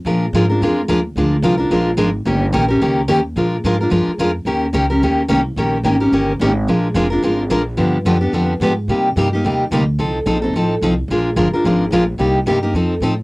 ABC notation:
X:1
M:4/4
L:1/8
Q:"Swing" 1/4=218
K:Bbmix
V:1 name="Steel-string acoustic guitar"
[F,A,DFB] z [F,A,DFB] [DFB] [F,A,DFB] z [F,A,DFB] z | [F,A,DFB] z [F,A,DFB] [DFB] [F,A,DFB] z [F,A,DFB] z | [E,B,_DGB] z [E,B,DGB] [DGB] [E,B,DGB] z [E,B,DGB] z | [F,A,DFB] z [F,A,DFB] [DFB] [F,A,DFB] z [F,A,DFB] z |
[E,B,_DGB] z [E,B,DGB] [DGB] [E,B,DGB] z [E,B,DGB] z | [E,B,_DGB] z [E,B,DGB] [DGB] [E,B,DGB] z [E,B,DGB] z | [F,A,DFB] z [F,A,DFB] [DFB] [F,A,DFB] z [F,A,DFB] z | [D,F,=B,DG] z [D,F,B,DG] [B,DG] [D,F,B,DG] z [D,F,B,DG] z |
[C,G,B,EG] z [C,G,B,EG] [B,EG] [C,G,B,EG] z [C,G,B,EG] z | [F,CE=A] z [F,CEA] [CEA] [F,CEA] z [F,CEA] z | [F,A,DFB] z [F,A,DFB] [DFB] [F,A,DFB] z [F,A,DFB] z | [C,G,B,EG] z [C,G,B,EG] [B,EG] [F,CE=A] z [F,CEA] z |]
V:2 name="Upright bass" clef=bass
B,,2 A,,2 F,,2 E,,2 | D,,2 C,,2 B,,,2 A,,,2 | G,,,2 B,,,2 _D,,2 E,,2 | B,,2 A,,2 G,, z F,,2 |
E,,2 _D,,2 E,,2 C,,2 | B,,,2 A,,,2 G,,,2 A,,,2 | B,,,2 F,,,2 A,,,2 B,,,2 | G,,2 _G,,2 F,,2 A,,2 |
C,2 G,,2 E,,2 D,,2 | C,,2 B,,,2 =A,,,2 C,,2 | B,,,2 G,,, z A,,,2 B,,,2 | C,,2 G,,2 F,,2 =A,,2 |]